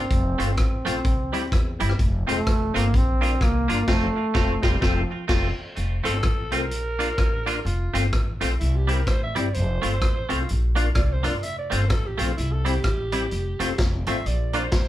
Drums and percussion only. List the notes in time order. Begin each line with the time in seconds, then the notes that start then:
0.11 kick, closed hi-hat
0.40 closed hi-hat
0.57 kick, cross-stick, closed hi-hat
0.86 closed hi-hat
1.05 kick, closed hi-hat
1.34 closed hi-hat
1.52 kick, cross-stick, closed hi-hat
1.80 closed hi-hat
1.89 cross-stick
1.99 kick, closed hi-hat
2.29 closed hi-hat
2.46 kick, cross-stick, closed hi-hat
2.76 closed hi-hat
2.94 kick, closed hi-hat
3.23 closed hi-hat
3.41 kick, cross-stick, closed hi-hat
3.70 closed hi-hat
3.88 kick, snare, crash
4.35 kick, snare
4.63 kick, snare
4.82 kick, snare
5.29 kick, snare, crash
5.76 closed hi-hat
6.05 closed hi-hat
6.23 kick, cross-stick, closed hi-hat
6.52 closed hi-hat
6.71 closed hi-hat
7.00 closed hi-hat
7.18 kick, cross-stick, closed hi-hat
7.47 closed hi-hat
7.66 closed hi-hat
7.95 closed hi-hat
8.12 kick, cross-stick, closed hi-hat
8.41 closed hi-hat
8.61 closed hi-hat
8.89 closed hi-hat
9.07 kick, cross-stick, closed hi-hat
9.36 closed hi-hat
9.54 closed hi-hat
9.83 closed hi-hat
10.01 kick, cross-stick, closed hi-hat
10.30 closed hi-hat
10.49 closed hi-hat
10.76 closed hi-hat
10.95 kick, cross-stick, closed hi-hat
11.24 cross-stick, closed hi-hat
11.43 closed hi-hat
11.72 closed hi-hat
11.90 kick, cross-stick, closed hi-hat
12.19 closed hi-hat
12.38 closed hi-hat
12.66 closed hi-hat
12.84 kick, cross-stick, closed hi-hat
13.12 closed hi-hat
13.31 closed hi-hat
13.60 closed hi-hat
13.78 kick, snare, closed hi-hat
14.06 closed hi-hat
14.26 closed hi-hat
14.53 closed hi-hat
14.72 kick, snare, closed hi-hat